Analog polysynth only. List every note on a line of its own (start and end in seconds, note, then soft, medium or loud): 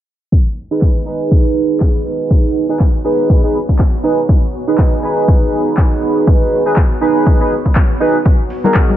0.71 1.04 D#4 medium
0.71 1.04 G#4 medium
0.71 1.04 B4 medium
1.06 2.66 D#4 medium
1.06 2.66 G#4 medium
1.06 2.67 B4 medium
2.69 2.83 D#4 medium
2.69 2.83 G#4 medium
2.69 2.83 B4 medium
3.04 3.40 D#4 medium
3.04 3.41 G#4 medium
3.04 3.41 B4 medium
3.44 3.57 D#4 medium
3.44 3.57 G#4 medium
3.44 3.58 B4 medium
4.03 4.20 D#4 medium
4.03 4.20 G#4 medium
4.03 4.21 B4 medium
4.68 5.00 D#4 medium
4.68 5.01 G#4 medium
4.68 5.01 B4 medium
5.02 6.62 D#4 medium
5.02 6.63 G#4 medium
5.02 6.63 B4 medium
6.66 6.79 D#4 medium
6.66 6.80 G#4 medium
6.66 6.80 B4 medium
7.01 7.37 D#4 medium
7.01 7.37 G#4 medium
7.01 7.38 B4 medium
7.40 7.54 D#4 medium
7.40 7.54 G#4 medium
7.40 7.54 B4 medium
8.00 8.17 D#4 medium
8.00 8.17 G#4 medium
8.00 8.17 B4 loud
8.64 8.97 D#4 medium
8.64 8.97 F#4 medium
8.64 8.97 G#4 medium
8.64 8.97 A#4 medium